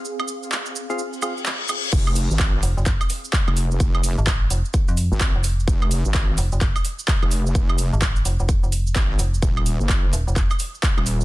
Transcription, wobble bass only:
X:1
M:4/4
L:1/16
Q:"Swing 16ths" 1/4=128
K:Fphr
V:1 name="Wobble bass" clef=bass
z16 | F,,,3 A,,,3 z6 z F,,,3 | F,,,3 z8 A,,,2 z3 | F,,,3 A,,,3 z6 z F,,,3 |
F,,,3 z8 z A,,,2 z2 | E,,,3 G,,,3 z6 z E,,,3 |]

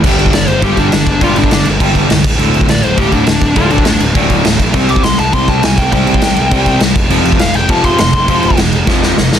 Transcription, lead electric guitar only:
X:1
M:4/4
L:1/8
Q:1/4=204
K:Gdor
V:1 name="Lead electric guitar"
z2 d c G D3 | F D D z4 z | z2 d c G D3 | F D D z4 z |
z d' c' a c' a ^g =g | g6 z2 | z2 f g a c' c'2- | c'2 z6 |]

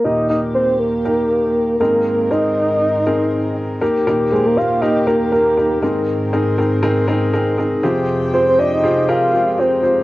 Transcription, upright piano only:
X:1
M:4/4
L:1/8
Q:"Swing 16ths" 1/4=120
K:Eb
V:1 name="Upright piano"
[B,EGB] [B,EGB]3 [B,EGB]3 [CEAB]- | [CEAB] [CEAB]3 [CEAB]3 [B,EGB] | [B,EGB] [B,EGc] [B,EGB] [B,EGB] [B,EGB] [B,EGB] [B,EGB] [CEAB]- | [CEAB] [CEAB] [CEAB] [CEAB] [CEAB] [CEAB] [CEAB] [FGAc]- |
[FGAc] [FGAc] [FGAe] [FGAc] [FGAB] [FGAc] [FGAc] [FGAc] |]
V:2 name="Upright piano" clef=bass
[E,,B,,]6- [E,,B,,] [A,,E,]- | [A,,E,]6- [A,,E,] z | [E,,B,,]6- [E,,B,,] [A,,E,]- | [A,,E,]6- [A,,E,] [F,,C,]- |
[F,,C,]6- [F,,C,] z |]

